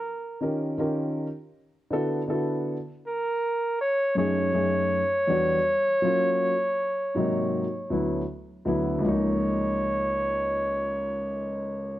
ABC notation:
X:1
M:4/4
L:1/8
Q:"Swing 16ths" 1/4=80
K:Db
V:1 name="Flugelhorn"
B z6 z | B2 d d4- d- | d6 z2 | d8 |]
V:2 name="Grand piano"
z [E,DF=GB] [E,DFGB] z2 [=D,=B,=E^F=A] [D,B,EFA] z | z3 [G,,=A,DE_A] [G,,=A,DE_A] z [=E,,=G,=B,=D^F] z | [G,B,DF] z2 [A,,C,G,B,E] z [=D,,^F,=A,=B,=E] z [D,,F,A,B,E] | [D,,F,A,B,E]8 |]